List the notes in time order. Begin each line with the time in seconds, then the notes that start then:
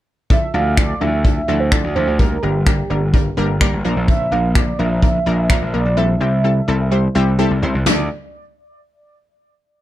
0.30 F3 D4 E4 A4 E5, kick
0.54 D2 F3 D4 E4 A4 F5
0.77 F3 D4 E4 A4 D5, finger snap, kick
1.01 D2 F3 D4 E4 A4 E5
1.24 F3 D4 E4 A4, kick
1.48 D2 F3 D4 E4 A4
1.60 C5
1.72 F3 D4 E4 A4 D5, finger snap, kick
1.84 D2
1.95 D2 F3 D4 E4 A4 C5
2.07 D2
2.19 G3 A#3 D4 A#4, kick
2.43 G1 G3 A#3 D4 G4 A#4
2.66 G3 A#3 D4 A#4, finger snap, kick
2.90 G1 G3 A#3 D4 A#4
3.14 G3 A#3 D4 A#4, kick
3.37 G1 G3 A#3 D4 A#4
3.61 G3 A#3 D4 A#4, finger snap, kick
3.73 G1
3.84 A#1 F3 A#3 D4 A#4
3.96 A#1
4.08 E5, kick
4.32 A#1 F3 A#3 D4 A#4 F5
4.55 F3 A#3 D4 A#4 D5, finger snap, kick
4.79 A#1 F3 A#3 D4 A#4 E5
5.02 F3 A#3 D4 A#4, kick
5.26 A#1 F3 A#3 D4 A#4
5.50 F3 A#3 D4 A#4, finger snap, kick
5.62 A#1
5.74 A#1 F3 A#3 D4 A#4 D5
5.86 A#1
5.97 G3 C4 E4 A4 E5
6.20 C2 G3 C4 E4 G4
6.44 G3 C4 E4 A4
6.68 C2 G3 C4 E4 A4
6.91 G3 C4 E4 C5
7.15 C2 G3 C4 E4 G4
7.39 G3 C4 E4 A4
7.51 C2
7.62 C2 G3 C4 E4 C5
7.74 C2
7.86 D2 F3 D4 E4 A4 D5, snare, floor tom, crash